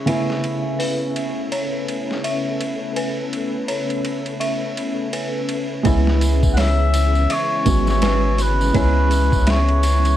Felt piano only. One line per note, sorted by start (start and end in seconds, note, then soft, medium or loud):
0.06 5.81 C#3 medium
0.06 5.82 A3 medium
0.06 5.82 B3 medium
0.06 5.83 C#4 medium
0.06 5.83 E4 medium
5.83 7.62 G#3 medium
5.83 7.62 B3 medium
5.83 7.63 C#4 medium
5.83 7.63 E4 medium
7.65 8.00 G#3 medium
7.65 8.00 B3 medium
7.65 8.00 C#4 medium
7.65 8.01 F#4 medium
8.73 10.17 G#3 medium
8.73 10.17 B3 medium
8.73 10.17 C#4 medium
8.73 10.17 E4 medium